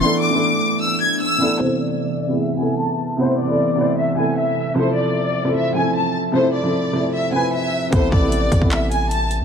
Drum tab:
HH |----------------|----------------|----------------|----------------|
CP |----------------|----------------|----------------|----------------|
BD |----------------|----------------|----------------|----------------|

HH |----------------|x---x-x-x-x-x-x-|
CP |----------------|--------x-------|
BD |----------------|o-o---oo--------|